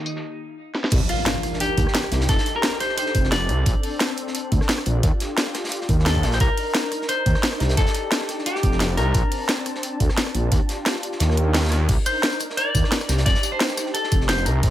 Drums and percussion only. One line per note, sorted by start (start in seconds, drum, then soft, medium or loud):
0.06 closed hi-hat medium
0.06 tambourine medium
0.16 snare soft
0.75 snare medium
0.84 snare medium
0.92 kick loud
0.92 closed hi-hat medium
0.92 closed hi-hat loud
0.92 crash loud
1.09 closed hi-hat medium
1.09 open hi-hat medium
1.25 snare loud
1.25 closed hi-hat medium
1.25 closed hi-hat loud
1.35 cross-stick soft
1.35 snare soft
1.43 cross-stick soft
1.43 closed hi-hat medium
1.54 snare soft
1.60 closed hi-hat loud
1.60 closed hi-hat medium
1.77 kick loud
1.77 closed hi-hat medium
1.87 cross-stick medium
1.87 snare soft
1.94 snare loud
1.94 closed hi-hat loud
1.94 closed hi-hat medium
2.03 cross-stick medium
2.03 snare soft
2.12 snare loud
2.12 closed hi-hat medium
2.21 snare loud
2.21 closed hi-hat medium
2.29 kick loud
2.29 snare loud
2.29 closed hi-hat medium
2.38 snare loud
2.38 closed hi-hat medium
2.46 snare soft
2.46 closed hi-hat medium
2.63 snare loud
2.63 closed hi-hat medium
2.63 closed hi-hat loud
2.72 cross-stick soft
2.72 snare medium
2.80 cross-stick soft
2.80 snare soft
2.80 closed hi-hat medium
2.89 snare soft
2.98 closed hi-hat loud
2.98 closed hi-hat medium
3.06 snare soft
3.15 kick loud
3.15 closed hi-hat medium
3.24 snare soft
3.32 snare loud
3.32 closed hi-hat medium
3.32 closed hi-hat loud
3.49 cross-stick soft
3.49 closed hi-hat medium
3.66 kick loud
3.66 closed hi-hat loud
3.66 closed hi-hat medium
3.83 closed hi-hat medium
3.83 open hi-hat medium
4.00 snare loud
4.00 closed hi-hat loud
4.00 closed hi-hat medium
4.09 cross-stick soft
4.09 snare soft
4.17 closed hi-hat medium
4.27 snare soft
4.35 closed hi-hat medium
4.52 kick loud
4.52 closed hi-hat medium
4.61 cross-stick medium
4.61 snare soft
4.69 snare loud
4.69 closed hi-hat medium
4.78 cross-stick medium
4.78 snare soft
4.86 closed hi-hat medium
5.03 kick loud
5.03 closed hi-hat medium
5.20 snare medium
5.20 closed hi-hat medium
5.38 snare loud
5.38 closed hi-hat medium
5.46 cross-stick soft
5.46 snare soft
5.54 cross-stick soft
5.54 snare medium
5.54 closed hi-hat medium
5.64 snare medium
5.64 closed hi-hat medium
5.68 snare medium
5.68 closed hi-hat medium
5.72 closed hi-hat medium
5.81 snare medium
5.89 kick loud
5.89 closed hi-hat medium
5.99 snare soft
6.05 snare loud
6.05 closed hi-hat medium
6.15 kick medium
6.23 cross-stick soft
6.23 snare loud
6.23 closed hi-hat medium
6.32 snare loud
6.32 closed hi-hat medium
6.40 kick loud
6.40 closed hi-hat medium
6.57 closed hi-hat medium
6.57 open hi-hat medium
6.74 snare loud
6.74 closed hi-hat medium
6.74 closed hi-hat loud
6.84 cross-stick soft
6.84 snare soft
6.92 cross-stick soft
6.92 closed hi-hat medium
7.02 snare soft
7.08 closed hi-hat medium
7.26 kick loud
7.26 closed hi-hat medium
7.34 cross-stick medium
7.34 snare soft
7.43 snare loud
7.43 closed hi-hat medium
7.52 cross-stick medium
7.52 snare soft
7.60 snare loud
7.60 closed hi-hat medium
7.69 snare loud
7.69 closed hi-hat medium
7.77 kick loud
7.77 snare loud
7.77 closed hi-hat medium
7.87 snare loud
7.87 closed hi-hat medium
7.94 snare soft
7.94 closed hi-hat medium
8.12 snare loud
8.12 closed hi-hat medium
8.12 closed hi-hat loud
8.21 cross-stick soft
8.21 snare soft
8.29 cross-stick soft
8.29 snare soft
8.29 closed hi-hat medium
8.39 snare soft
8.46 closed hi-hat medium
8.55 snare medium
8.63 kick loud
8.63 closed hi-hat medium
8.72 snare soft
8.80 snare loud
8.80 closed hi-hat medium
8.98 cross-stick soft
8.98 closed hi-hat medium
9.14 kick loud
9.14 closed hi-hat medium
9.32 closed hi-hat medium
9.32 open hi-hat medium
9.49 snare loud
9.49 closed hi-hat loud
9.58 cross-stick soft
9.58 snare soft
9.66 cross-stick soft
9.66 closed hi-hat medium
9.75 snare soft
9.83 closed hi-hat medium
9.83 closed hi-hat loud
10.00 kick loud
10.00 closed hi-hat medium
10.09 cross-stick medium
10.09 snare soft
10.17 snare loud
10.17 closed hi-hat medium
10.26 cross-stick medium
10.26 snare soft
10.35 closed hi-hat medium
10.52 kick loud
10.52 closed hi-hat loud
10.52 closed hi-hat medium
10.69 snare medium
10.69 closed hi-hat medium
10.86 snare loud
10.86 closed hi-hat loud
10.86 closed hi-hat medium
10.95 cross-stick soft
10.95 snare soft
11.03 closed hi-hat medium
11.12 snare soft
11.20 snare loud
11.20 closed hi-hat medium
11.20 closed hi-hat loud
11.30 cross-stick soft
11.30 snare soft
11.37 closed hi-hat medium
11.54 snare medium
11.54 snare loud
11.54 closed hi-hat medium
11.54 closed hi-hat loud
11.59 snare loud
11.59 closed hi-hat medium
11.64 snare medium
11.64 closed hi-hat medium
11.68 snare medium
11.68 closed hi-hat medium
11.72 cross-stick soft
11.72 snare soft
11.72 closed hi-hat medium
11.89 kick loud
11.89 closed hi-hat medium
11.89 closed hi-hat loud
11.89 crash medium
12.06 closed hi-hat medium
12.06 open hi-hat medium
12.06 tambourine medium
12.23 snare loud
12.23 closed hi-hat loud
12.33 cross-stick soft
12.33 snare soft
12.33 tambourine soft
12.39 cross-stick soft
12.39 closed hi-hat medium
12.39 tambourine medium
12.50 snare medium
12.57 closed hi-hat loud
12.57 closed hi-hat medium
12.75 kick loud
12.75 closed hi-hat medium
12.75 tambourine medium
12.84 cross-stick medium
12.84 snare soft
12.92 snare loud
12.92 closed hi-hat medium
13.01 cross-stick medium
13.01 snare soft
13.01 tambourine soft
13.09 snare loud
13.09 closed hi-hat medium
13.09 tambourine medium
13.18 snare loud
13.18 closed hi-hat medium
13.26 kick loud
13.26 snare loud
13.26 closed hi-hat medium
13.35 snare medium
13.35 closed hi-hat medium
13.43 snare medium
13.43 closed hi-hat medium
13.43 tambourine medium
13.60 snare loud
13.60 closed hi-hat medium
13.60 closed hi-hat loud
13.70 cross-stick soft
13.70 snare medium
13.70 tambourine soft
13.77 cross-stick soft
13.77 snare soft
13.77 closed hi-hat medium
13.77 tambourine medium
13.86 snare soft
13.95 closed hi-hat loud
13.95 closed hi-hat medium
14.04 snare medium
14.12 kick loud
14.12 closed hi-hat medium
14.12 tambourine medium
14.21 snare soft
14.29 snare loud
14.29 closed hi-hat medium
14.29 closed hi-hat loud
14.38 tambourine soft
14.46 cross-stick soft
14.46 closed hi-hat medium
14.46 tambourine medium
14.63 kick loud
14.63 closed hi-hat medium